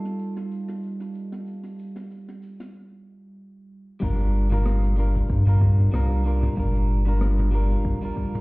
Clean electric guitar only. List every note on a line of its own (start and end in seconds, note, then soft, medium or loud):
0.00 3.96 G3 medium
0.00 3.98 D#4 medium
0.00 3.99 F4 medium
0.00 4.00 A4 medium
4.00 4.46 G3 medium
4.00 4.47 D4 medium
4.00 4.48 F4 medium
4.00 4.48 A#4 medium
4.50 4.93 G3 loud
4.50 4.94 D4 medium
4.50 4.95 F4 medium
4.50 4.95 A#4 loud
4.96 5.42 G3 medium
4.96 5.43 D4 medium
4.96 5.43 F4 medium
4.96 5.44 A#4 medium
5.45 5.89 G3 medium
5.45 5.90 D4 medium
5.45 5.90 F4 medium
5.45 5.91 A#4 medium
5.92 6.21 G3 medium
5.92 6.22 D4 medium
5.92 6.22 F4 medium
5.92 6.23 A#4 loud
6.24 6.53 G3 medium
6.24 6.54 D4 medium
6.24 6.54 F4 medium
6.24 6.55 A#4 medium
6.56 7.02 G3 medium
6.56 7.02 D4 medium
6.56 7.03 F4 medium
6.56 7.04 A#4 medium
7.05 7.49 G3 medium
7.05 7.49 D4 medium
7.05 7.50 F4 medium
7.05 7.51 A#4 loud
7.51 7.97 G3 medium
7.51 7.98 D4 medium
7.51 7.99 F4 medium
7.51 7.99 A#4 loud
8.01 8.41 G3 medium
8.01 8.41 D4 medium
8.01 8.41 F4 medium
8.01 8.41 A#4 medium